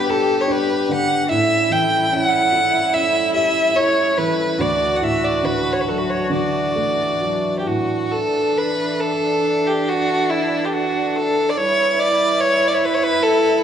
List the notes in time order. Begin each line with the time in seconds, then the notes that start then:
Already playing: G2 D3 G3 B3 D4 G4 B4
0.08 G4 A4
0.40 C#5
0.48 D4 B4
0.89 D3 F#5
1.30 A2 C#4 E4 A4 E5
1.70 E3 G5
2.12 C#4 F#5
2.52 E4
2.94 C#4 E5
3.34 G4 E5
3.74 E4 C#5
4.18 E3 B4
4.58 D2 E3 D4 F#4 D5
4.96 F#5
5.01 A2 E5
5.24 D5
5.43 D3 B4
5.72 C#5
5.80 B4
5.86 F#3 A4
5.98 B4
6.10 C#5
6.30 D3 D5
6.75 A3
7.21 F#3
7.59 G4
7.66 A2 F#4
8.09 E3 D4 A4
8.57 B4
9.00 A4
9.66 G4
9.89 F#4
10.29 E4
10.64 G4
10.72 F#4
11.15 A4
11.49 D5
11.56 G3 E4 B4 C#5
11.99 D5
12.40 C#5
12.67 D5
12.74 C#5
12.84 B4
12.94 C#5
13.03 B4
13.23 A4
13.57 A4